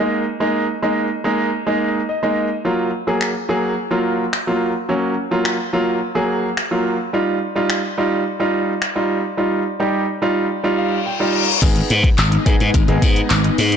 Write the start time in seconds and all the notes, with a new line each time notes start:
0.00 G#3 A#3 D#4
0.40 G#3 A#3 D#4
0.82 G#3 A#3 D#4
1.24 G#3 A#3 D#4
1.67 G#3 A#3 D#4
2.09 D#5
2.23 G#3 A#3 D#4
2.65 F#3 A#3 F4
3.07 F#3 A#3 G#4
3.21 finger snap
3.49 F#3 A#3 G#4
3.91 F#3 A#3 F4
4.33 finger snap
4.47 F#3 A#3 F4
4.89 F#3 A#3 C#4
5.31 F#3 A#3 F4
5.45 finger snap
5.73 F#3 A#3 F4
6.15 F#3 A#3 G#4
6.57 finger snap
6.71 F#3 A#3 F4
7.13 G3 D#4 F4
7.55 G3 D#4 F4
7.70 finger snap
7.98 G3 D#4 F4
8.40 G3 D#4 F4
8.82 finger snap
8.96 G3 D#4 F4
9.37 G3 D#4 F4
9.80 G3 D#4 G4
10.22 G3 D#4 F4
10.50 reverse cymbal
10.64 G3 D#4 F4
10.78 F5
11.06 G5
11.20 G3 D#4 F4 G5
11.34 A#5
11.62 G#1 G#3 B3 D#4 G#4, kick, closed hi-hat, crash, tambourine
11.76 closed hi-hat
11.90 G#2, closed hi-hat, tambourine
12.04 kick, closed hi-hat
12.18 G#1, clap, closed hi-hat, tambourine
12.32 closed hi-hat
12.46 G#2 B3 D#4 G#4, kick, closed hi-hat, tambourine
12.60 G#2, closed hi-hat
12.74 G#1, kick, closed hi-hat, tambourine
12.88 G#1 B3 D#4 G#4, closed hi-hat
13.02 G#2, kick, closed hi-hat, tambourine
13.16 closed hi-hat
13.30 G#1, clap, closed hi-hat, tambourine
13.44 closed hi-hat
13.58 G#2, open hi-hat, tambourine
13.72 closed hi-hat